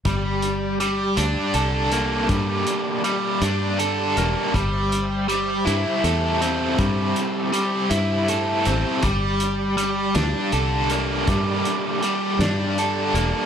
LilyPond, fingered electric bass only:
\new Staff \with { instrumentName = "Fingered electric bass" } { \clef bass \time 6/8 \key g \dorian \tempo 4. = 53 g,,4. d,16 r16 c,4 | g,8 r4 g,4 e,,16 r16 | g,,4. g,16 r16 e,4 | g,8 r4 g,4 a,,16 r16 |
g,,4. d,16 r16 c,4 | g,8 r4 g,4 e,,16 r16 | }